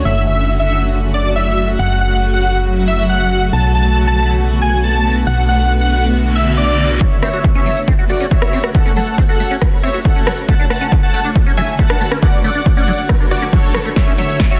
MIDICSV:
0, 0, Header, 1, 6, 480
1, 0, Start_track
1, 0, Key_signature, 3, "minor"
1, 0, Tempo, 434783
1, 56, Time_signature, 4, 2, 24, 8
1, 16117, End_track
2, 0, Start_track
2, 0, Title_t, "Supersaw synth"
2, 0, Program_c, 0, 81
2, 57, Note_on_c, 0, 76, 97
2, 235, Note_off_c, 0, 76, 0
2, 298, Note_on_c, 0, 76, 91
2, 565, Note_off_c, 0, 76, 0
2, 658, Note_on_c, 0, 76, 92
2, 925, Note_off_c, 0, 76, 0
2, 1258, Note_on_c, 0, 74, 93
2, 1436, Note_off_c, 0, 74, 0
2, 1498, Note_on_c, 0, 76, 97
2, 1854, Note_off_c, 0, 76, 0
2, 1977, Note_on_c, 0, 78, 100
2, 2155, Note_off_c, 0, 78, 0
2, 2217, Note_on_c, 0, 78, 89
2, 2485, Note_off_c, 0, 78, 0
2, 2577, Note_on_c, 0, 78, 91
2, 2844, Note_off_c, 0, 78, 0
2, 3175, Note_on_c, 0, 76, 89
2, 3354, Note_off_c, 0, 76, 0
2, 3415, Note_on_c, 0, 78, 96
2, 3773, Note_off_c, 0, 78, 0
2, 3897, Note_on_c, 0, 81, 97
2, 4075, Note_off_c, 0, 81, 0
2, 4135, Note_on_c, 0, 81, 94
2, 4404, Note_off_c, 0, 81, 0
2, 4495, Note_on_c, 0, 81, 92
2, 4764, Note_off_c, 0, 81, 0
2, 5096, Note_on_c, 0, 80, 89
2, 5275, Note_off_c, 0, 80, 0
2, 5335, Note_on_c, 0, 81, 94
2, 5693, Note_off_c, 0, 81, 0
2, 5815, Note_on_c, 0, 78, 98
2, 5994, Note_off_c, 0, 78, 0
2, 6055, Note_on_c, 0, 78, 92
2, 6324, Note_off_c, 0, 78, 0
2, 6416, Note_on_c, 0, 78, 96
2, 6684, Note_off_c, 0, 78, 0
2, 7015, Note_on_c, 0, 76, 92
2, 7194, Note_off_c, 0, 76, 0
2, 7255, Note_on_c, 0, 74, 98
2, 7613, Note_off_c, 0, 74, 0
2, 7736, Note_on_c, 0, 73, 77
2, 7736, Note_on_c, 0, 76, 94
2, 7915, Note_off_c, 0, 73, 0
2, 7915, Note_off_c, 0, 76, 0
2, 7976, Note_on_c, 0, 73, 77
2, 7976, Note_on_c, 0, 76, 90
2, 8244, Note_off_c, 0, 73, 0
2, 8244, Note_off_c, 0, 76, 0
2, 8335, Note_on_c, 0, 73, 78
2, 8335, Note_on_c, 0, 76, 92
2, 8603, Note_off_c, 0, 76, 0
2, 8604, Note_off_c, 0, 73, 0
2, 8935, Note_on_c, 0, 74, 93
2, 8936, Note_on_c, 0, 66, 79
2, 9114, Note_off_c, 0, 74, 0
2, 9115, Note_off_c, 0, 66, 0
2, 9176, Note_on_c, 0, 76, 98
2, 9177, Note_on_c, 0, 73, 80
2, 9533, Note_off_c, 0, 73, 0
2, 9533, Note_off_c, 0, 76, 0
2, 9656, Note_on_c, 0, 78, 97
2, 9657, Note_on_c, 0, 69, 75
2, 9835, Note_off_c, 0, 69, 0
2, 9835, Note_off_c, 0, 78, 0
2, 9896, Note_on_c, 0, 69, 77
2, 9896, Note_on_c, 0, 78, 92
2, 10164, Note_off_c, 0, 69, 0
2, 10164, Note_off_c, 0, 78, 0
2, 10256, Note_on_c, 0, 69, 78
2, 10256, Note_on_c, 0, 78, 93
2, 10524, Note_off_c, 0, 69, 0
2, 10524, Note_off_c, 0, 78, 0
2, 10856, Note_on_c, 0, 73, 81
2, 10856, Note_on_c, 0, 76, 89
2, 11035, Note_off_c, 0, 73, 0
2, 11035, Note_off_c, 0, 76, 0
2, 11097, Note_on_c, 0, 69, 79
2, 11097, Note_on_c, 0, 78, 95
2, 11453, Note_off_c, 0, 69, 0
2, 11453, Note_off_c, 0, 78, 0
2, 11574, Note_on_c, 0, 78, 78
2, 11574, Note_on_c, 0, 81, 96
2, 11754, Note_off_c, 0, 78, 0
2, 11754, Note_off_c, 0, 81, 0
2, 11815, Note_on_c, 0, 78, 73
2, 11815, Note_on_c, 0, 81, 93
2, 12083, Note_off_c, 0, 81, 0
2, 12084, Note_off_c, 0, 78, 0
2, 12175, Note_on_c, 0, 81, 93
2, 12176, Note_on_c, 0, 78, 77
2, 12444, Note_off_c, 0, 78, 0
2, 12444, Note_off_c, 0, 81, 0
2, 12775, Note_on_c, 0, 80, 93
2, 12776, Note_on_c, 0, 76, 80
2, 12954, Note_off_c, 0, 80, 0
2, 12955, Note_off_c, 0, 76, 0
2, 13015, Note_on_c, 0, 81, 99
2, 13016, Note_on_c, 0, 78, 80
2, 13373, Note_off_c, 0, 78, 0
2, 13373, Note_off_c, 0, 81, 0
2, 13495, Note_on_c, 0, 74, 77
2, 13496, Note_on_c, 0, 78, 102
2, 13674, Note_off_c, 0, 74, 0
2, 13675, Note_off_c, 0, 78, 0
2, 13735, Note_on_c, 0, 74, 76
2, 13735, Note_on_c, 0, 78, 94
2, 14003, Note_off_c, 0, 74, 0
2, 14003, Note_off_c, 0, 78, 0
2, 14095, Note_on_c, 0, 74, 80
2, 14095, Note_on_c, 0, 78, 98
2, 14363, Note_off_c, 0, 74, 0
2, 14363, Note_off_c, 0, 78, 0
2, 14694, Note_on_c, 0, 66, 81
2, 14695, Note_on_c, 0, 74, 96
2, 14874, Note_off_c, 0, 66, 0
2, 14874, Note_off_c, 0, 74, 0
2, 14935, Note_on_c, 0, 69, 81
2, 14935, Note_on_c, 0, 73, 97
2, 15293, Note_off_c, 0, 69, 0
2, 15293, Note_off_c, 0, 73, 0
2, 15416, Note_on_c, 0, 73, 71
2, 15416, Note_on_c, 0, 76, 92
2, 15595, Note_off_c, 0, 73, 0
2, 15595, Note_off_c, 0, 76, 0
2, 15656, Note_on_c, 0, 76, 87
2, 15657, Note_on_c, 0, 73, 69
2, 15924, Note_off_c, 0, 73, 0
2, 15924, Note_off_c, 0, 76, 0
2, 16016, Note_on_c, 0, 76, 89
2, 16017, Note_on_c, 0, 73, 72
2, 16117, Note_off_c, 0, 73, 0
2, 16117, Note_off_c, 0, 76, 0
2, 16117, End_track
3, 0, Start_track
3, 0, Title_t, "Acid bass"
3, 0, Program_c, 1, 38
3, 7737, Note_on_c, 1, 54, 84
3, 7780, Note_off_c, 1, 54, 0
3, 7977, Note_on_c, 1, 60, 97
3, 8042, Note_off_c, 1, 60, 0
3, 8097, Note_on_c, 1, 66, 78
3, 8162, Note_off_c, 1, 66, 0
3, 8217, Note_on_c, 1, 57, 80
3, 8243, Note_off_c, 1, 57, 0
3, 8338, Note_on_c, 1, 61, 102
3, 8402, Note_off_c, 1, 61, 0
3, 8457, Note_on_c, 1, 54, 73
3, 8500, Note_off_c, 1, 54, 0
3, 8697, Note_on_c, 1, 60, 102
3, 8762, Note_off_c, 1, 60, 0
3, 8818, Note_on_c, 1, 66, 75
3, 8882, Note_off_c, 1, 66, 0
3, 8937, Note_on_c, 1, 57, 75
3, 8963, Note_off_c, 1, 57, 0
3, 9057, Note_on_c, 1, 61, 99
3, 9122, Note_off_c, 1, 61, 0
3, 9176, Note_on_c, 1, 54, 80
3, 9220, Note_off_c, 1, 54, 0
3, 9418, Note_on_c, 1, 60, 96
3, 9482, Note_off_c, 1, 60, 0
3, 9537, Note_on_c, 1, 66, 79
3, 9602, Note_off_c, 1, 66, 0
3, 9657, Note_on_c, 1, 57, 82
3, 9683, Note_off_c, 1, 57, 0
3, 9777, Note_on_c, 1, 61, 101
3, 9842, Note_off_c, 1, 61, 0
3, 9897, Note_on_c, 1, 54, 73
3, 9940, Note_off_c, 1, 54, 0
3, 10136, Note_on_c, 1, 60, 104
3, 10201, Note_off_c, 1, 60, 0
3, 10256, Note_on_c, 1, 66, 77
3, 10321, Note_off_c, 1, 66, 0
3, 10377, Note_on_c, 1, 57, 75
3, 10403, Note_off_c, 1, 57, 0
3, 10496, Note_on_c, 1, 61, 103
3, 10561, Note_off_c, 1, 61, 0
3, 10616, Note_on_c, 1, 54, 85
3, 10660, Note_off_c, 1, 54, 0
3, 10855, Note_on_c, 1, 60, 97
3, 10921, Note_off_c, 1, 60, 0
3, 10976, Note_on_c, 1, 66, 73
3, 11041, Note_off_c, 1, 66, 0
3, 11095, Note_on_c, 1, 57, 86
3, 11122, Note_off_c, 1, 57, 0
3, 11216, Note_on_c, 1, 61, 96
3, 11281, Note_off_c, 1, 61, 0
3, 11336, Note_on_c, 1, 54, 78
3, 11380, Note_off_c, 1, 54, 0
3, 11577, Note_on_c, 1, 57, 102
3, 11642, Note_off_c, 1, 57, 0
3, 11696, Note_on_c, 1, 62, 73
3, 11762, Note_off_c, 1, 62, 0
3, 11816, Note_on_c, 1, 57, 72
3, 11842, Note_off_c, 1, 57, 0
3, 11936, Note_on_c, 1, 61, 100
3, 12001, Note_off_c, 1, 61, 0
3, 12057, Note_on_c, 1, 54, 81
3, 12100, Note_off_c, 1, 54, 0
3, 12296, Note_on_c, 1, 57, 103
3, 12361, Note_off_c, 1, 57, 0
3, 12416, Note_on_c, 1, 62, 78
3, 12481, Note_off_c, 1, 62, 0
3, 12656, Note_on_c, 1, 61, 101
3, 12721, Note_off_c, 1, 61, 0
3, 12777, Note_on_c, 1, 54, 76
3, 12820, Note_off_c, 1, 54, 0
3, 13016, Note_on_c, 1, 57, 103
3, 13082, Note_off_c, 1, 57, 0
3, 13136, Note_on_c, 1, 62, 73
3, 13201, Note_off_c, 1, 62, 0
3, 13256, Note_on_c, 1, 57, 73
3, 13282, Note_off_c, 1, 57, 0
3, 13375, Note_on_c, 1, 61, 103
3, 13441, Note_off_c, 1, 61, 0
3, 13496, Note_on_c, 1, 54, 79
3, 13540, Note_off_c, 1, 54, 0
3, 13736, Note_on_c, 1, 57, 100
3, 13801, Note_off_c, 1, 57, 0
3, 13857, Note_on_c, 1, 62, 78
3, 13922, Note_off_c, 1, 62, 0
3, 13977, Note_on_c, 1, 57, 83
3, 14003, Note_off_c, 1, 57, 0
3, 14097, Note_on_c, 1, 61, 104
3, 14162, Note_off_c, 1, 61, 0
3, 14217, Note_on_c, 1, 54, 76
3, 14260, Note_off_c, 1, 54, 0
3, 14457, Note_on_c, 1, 57, 105
3, 14522, Note_off_c, 1, 57, 0
3, 14577, Note_on_c, 1, 62, 77
3, 14642, Note_off_c, 1, 62, 0
3, 14697, Note_on_c, 1, 66, 75
3, 14740, Note_off_c, 1, 66, 0
3, 14816, Note_on_c, 1, 61, 94
3, 14843, Note_off_c, 1, 61, 0
3, 14936, Note_on_c, 1, 54, 85
3, 15001, Note_off_c, 1, 54, 0
3, 15177, Note_on_c, 1, 54, 77
3, 15220, Note_off_c, 1, 54, 0
3, 15297, Note_on_c, 1, 57, 81
3, 15340, Note_off_c, 1, 57, 0
3, 15417, Note_on_c, 1, 57, 74
3, 15443, Note_off_c, 1, 57, 0
3, 15537, Note_on_c, 1, 61, 96
3, 15602, Note_off_c, 1, 61, 0
3, 15658, Note_on_c, 1, 54, 71
3, 15701, Note_off_c, 1, 54, 0
3, 15898, Note_on_c, 1, 59, 96
3, 15962, Note_off_c, 1, 59, 0
3, 16018, Note_on_c, 1, 66, 70
3, 16082, Note_off_c, 1, 66, 0
3, 16117, End_track
4, 0, Start_track
4, 0, Title_t, "FM bass"
4, 0, Program_c, 2, 39
4, 57, Note_on_c, 2, 30, 87
4, 1953, Note_off_c, 2, 30, 0
4, 1977, Note_on_c, 2, 30, 86
4, 3873, Note_off_c, 2, 30, 0
4, 3897, Note_on_c, 2, 35, 84
4, 5793, Note_off_c, 2, 35, 0
4, 5817, Note_on_c, 2, 35, 87
4, 7713, Note_off_c, 2, 35, 0
4, 16117, End_track
5, 0, Start_track
5, 0, Title_t, "Reverse cymbal"
5, 0, Program_c, 3, 119
5, 6777, Note_on_c, 3, 60, 74
5, 7737, Note_off_c, 3, 60, 0
5, 16117, End_track
6, 0, Start_track
6, 0, Title_t, "Drums"
6, 7737, Note_on_c, 9, 42, 51
6, 7738, Note_on_c, 9, 36, 111
6, 7848, Note_off_c, 9, 36, 0
6, 7848, Note_off_c, 9, 42, 0
6, 7857, Note_on_c, 9, 42, 26
6, 7967, Note_off_c, 9, 42, 0
6, 7977, Note_on_c, 9, 37, 53
6, 7977, Note_on_c, 9, 46, 102
6, 8088, Note_off_c, 9, 37, 0
6, 8088, Note_off_c, 9, 46, 0
6, 8097, Note_on_c, 9, 42, 52
6, 8207, Note_off_c, 9, 42, 0
6, 8217, Note_on_c, 9, 42, 53
6, 8218, Note_on_c, 9, 36, 115
6, 8327, Note_off_c, 9, 42, 0
6, 8328, Note_off_c, 9, 36, 0
6, 8337, Note_on_c, 9, 42, 26
6, 8447, Note_off_c, 9, 42, 0
6, 8456, Note_on_c, 9, 46, 106
6, 8566, Note_off_c, 9, 46, 0
6, 8577, Note_on_c, 9, 42, 54
6, 8687, Note_off_c, 9, 42, 0
6, 8696, Note_on_c, 9, 42, 55
6, 8698, Note_on_c, 9, 36, 117
6, 8807, Note_off_c, 9, 42, 0
6, 8808, Note_off_c, 9, 36, 0
6, 8816, Note_on_c, 9, 42, 26
6, 8927, Note_off_c, 9, 42, 0
6, 8936, Note_on_c, 9, 46, 101
6, 9046, Note_off_c, 9, 46, 0
6, 9056, Note_on_c, 9, 42, 57
6, 9166, Note_off_c, 9, 42, 0
6, 9176, Note_on_c, 9, 42, 53
6, 9177, Note_on_c, 9, 36, 112
6, 9286, Note_off_c, 9, 42, 0
6, 9288, Note_off_c, 9, 36, 0
6, 9295, Note_on_c, 9, 37, 71
6, 9295, Note_on_c, 9, 42, 26
6, 9406, Note_off_c, 9, 37, 0
6, 9406, Note_off_c, 9, 42, 0
6, 9415, Note_on_c, 9, 46, 101
6, 9526, Note_off_c, 9, 46, 0
6, 9535, Note_on_c, 9, 37, 71
6, 9535, Note_on_c, 9, 42, 53
6, 9646, Note_off_c, 9, 37, 0
6, 9646, Note_off_c, 9, 42, 0
6, 9655, Note_on_c, 9, 42, 53
6, 9657, Note_on_c, 9, 36, 124
6, 9766, Note_off_c, 9, 42, 0
6, 9767, Note_off_c, 9, 36, 0
6, 9775, Note_on_c, 9, 42, 25
6, 9886, Note_off_c, 9, 42, 0
6, 9895, Note_on_c, 9, 46, 104
6, 10005, Note_off_c, 9, 46, 0
6, 10015, Note_on_c, 9, 42, 51
6, 10126, Note_off_c, 9, 42, 0
6, 10136, Note_on_c, 9, 42, 51
6, 10137, Note_on_c, 9, 36, 119
6, 10246, Note_off_c, 9, 42, 0
6, 10247, Note_off_c, 9, 36, 0
6, 10256, Note_on_c, 9, 42, 26
6, 10366, Note_off_c, 9, 42, 0
6, 10376, Note_on_c, 9, 46, 112
6, 10486, Note_off_c, 9, 46, 0
6, 10496, Note_on_c, 9, 42, 53
6, 10606, Note_off_c, 9, 42, 0
6, 10616, Note_on_c, 9, 37, 78
6, 10616, Note_on_c, 9, 42, 52
6, 10617, Note_on_c, 9, 36, 121
6, 10726, Note_off_c, 9, 37, 0
6, 10726, Note_off_c, 9, 42, 0
6, 10727, Note_off_c, 9, 36, 0
6, 10735, Note_on_c, 9, 42, 26
6, 10846, Note_off_c, 9, 42, 0
6, 10855, Note_on_c, 9, 46, 106
6, 10965, Note_off_c, 9, 46, 0
6, 10976, Note_on_c, 9, 42, 55
6, 11086, Note_off_c, 9, 42, 0
6, 11096, Note_on_c, 9, 42, 53
6, 11097, Note_on_c, 9, 36, 118
6, 11207, Note_off_c, 9, 36, 0
6, 11207, Note_off_c, 9, 42, 0
6, 11216, Note_on_c, 9, 42, 26
6, 11327, Note_off_c, 9, 42, 0
6, 11337, Note_on_c, 9, 37, 77
6, 11337, Note_on_c, 9, 46, 109
6, 11447, Note_off_c, 9, 37, 0
6, 11447, Note_off_c, 9, 46, 0
6, 11457, Note_on_c, 9, 42, 52
6, 11567, Note_off_c, 9, 42, 0
6, 11577, Note_on_c, 9, 36, 126
6, 11577, Note_on_c, 9, 42, 52
6, 11687, Note_off_c, 9, 36, 0
6, 11687, Note_off_c, 9, 42, 0
6, 11697, Note_on_c, 9, 42, 24
6, 11807, Note_off_c, 9, 42, 0
6, 11816, Note_on_c, 9, 37, 63
6, 11816, Note_on_c, 9, 46, 108
6, 11927, Note_off_c, 9, 37, 0
6, 11927, Note_off_c, 9, 46, 0
6, 11936, Note_on_c, 9, 42, 48
6, 12046, Note_off_c, 9, 42, 0
6, 12056, Note_on_c, 9, 42, 50
6, 12057, Note_on_c, 9, 36, 121
6, 12167, Note_off_c, 9, 36, 0
6, 12167, Note_off_c, 9, 42, 0
6, 12177, Note_on_c, 9, 42, 26
6, 12287, Note_off_c, 9, 42, 0
6, 12296, Note_on_c, 9, 46, 111
6, 12407, Note_off_c, 9, 46, 0
6, 12416, Note_on_c, 9, 42, 52
6, 12527, Note_off_c, 9, 42, 0
6, 12537, Note_on_c, 9, 36, 118
6, 12537, Note_on_c, 9, 42, 51
6, 12647, Note_off_c, 9, 36, 0
6, 12648, Note_off_c, 9, 42, 0
6, 12657, Note_on_c, 9, 42, 25
6, 12767, Note_off_c, 9, 42, 0
6, 12777, Note_on_c, 9, 46, 103
6, 12887, Note_off_c, 9, 46, 0
6, 12897, Note_on_c, 9, 42, 52
6, 13007, Note_off_c, 9, 42, 0
6, 13016, Note_on_c, 9, 42, 53
6, 13017, Note_on_c, 9, 36, 121
6, 13127, Note_off_c, 9, 36, 0
6, 13127, Note_off_c, 9, 42, 0
6, 13137, Note_on_c, 9, 37, 80
6, 13137, Note_on_c, 9, 42, 25
6, 13247, Note_off_c, 9, 37, 0
6, 13247, Note_off_c, 9, 42, 0
6, 13255, Note_on_c, 9, 46, 111
6, 13366, Note_off_c, 9, 46, 0
6, 13376, Note_on_c, 9, 37, 80
6, 13486, Note_off_c, 9, 37, 0
6, 13496, Note_on_c, 9, 42, 50
6, 13497, Note_on_c, 9, 36, 124
6, 13606, Note_off_c, 9, 42, 0
6, 13607, Note_off_c, 9, 36, 0
6, 13616, Note_on_c, 9, 42, 24
6, 13726, Note_off_c, 9, 42, 0
6, 13735, Note_on_c, 9, 46, 105
6, 13845, Note_off_c, 9, 46, 0
6, 13855, Note_on_c, 9, 42, 48
6, 13965, Note_off_c, 9, 42, 0
6, 13975, Note_on_c, 9, 42, 50
6, 13977, Note_on_c, 9, 36, 116
6, 14085, Note_off_c, 9, 42, 0
6, 14087, Note_off_c, 9, 36, 0
6, 14095, Note_on_c, 9, 42, 25
6, 14205, Note_off_c, 9, 42, 0
6, 14214, Note_on_c, 9, 46, 108
6, 14325, Note_off_c, 9, 46, 0
6, 14335, Note_on_c, 9, 42, 48
6, 14445, Note_off_c, 9, 42, 0
6, 14455, Note_on_c, 9, 37, 84
6, 14455, Note_on_c, 9, 42, 50
6, 14457, Note_on_c, 9, 36, 123
6, 14565, Note_off_c, 9, 37, 0
6, 14565, Note_off_c, 9, 42, 0
6, 14567, Note_off_c, 9, 36, 0
6, 14575, Note_on_c, 9, 42, 24
6, 14685, Note_off_c, 9, 42, 0
6, 14694, Note_on_c, 9, 46, 109
6, 14805, Note_off_c, 9, 46, 0
6, 14814, Note_on_c, 9, 42, 52
6, 14925, Note_off_c, 9, 42, 0
6, 14934, Note_on_c, 9, 42, 53
6, 14937, Note_on_c, 9, 36, 122
6, 15045, Note_off_c, 9, 42, 0
6, 15047, Note_off_c, 9, 36, 0
6, 15055, Note_on_c, 9, 42, 25
6, 15165, Note_off_c, 9, 42, 0
6, 15174, Note_on_c, 9, 37, 83
6, 15174, Note_on_c, 9, 46, 111
6, 15285, Note_off_c, 9, 37, 0
6, 15285, Note_off_c, 9, 46, 0
6, 15295, Note_on_c, 9, 42, 49
6, 15405, Note_off_c, 9, 42, 0
6, 15415, Note_on_c, 9, 38, 49
6, 15415, Note_on_c, 9, 42, 52
6, 15415, Note_on_c, 9, 82, 33
6, 15417, Note_on_c, 9, 36, 116
6, 15525, Note_off_c, 9, 38, 0
6, 15525, Note_off_c, 9, 42, 0
6, 15525, Note_off_c, 9, 82, 0
6, 15528, Note_off_c, 9, 36, 0
6, 15535, Note_on_c, 9, 42, 24
6, 15646, Note_off_c, 9, 42, 0
6, 15655, Note_on_c, 9, 46, 103
6, 15655, Note_on_c, 9, 82, 76
6, 15765, Note_off_c, 9, 46, 0
6, 15765, Note_off_c, 9, 82, 0
6, 15775, Note_on_c, 9, 42, 49
6, 15775, Note_on_c, 9, 82, 42
6, 15886, Note_off_c, 9, 42, 0
6, 15886, Note_off_c, 9, 82, 0
6, 15895, Note_on_c, 9, 38, 50
6, 15895, Note_on_c, 9, 42, 49
6, 15895, Note_on_c, 9, 82, 34
6, 15897, Note_on_c, 9, 36, 118
6, 16006, Note_off_c, 9, 38, 0
6, 16006, Note_off_c, 9, 42, 0
6, 16006, Note_off_c, 9, 82, 0
6, 16008, Note_off_c, 9, 36, 0
6, 16015, Note_on_c, 9, 42, 26
6, 16117, Note_off_c, 9, 42, 0
6, 16117, End_track
0, 0, End_of_file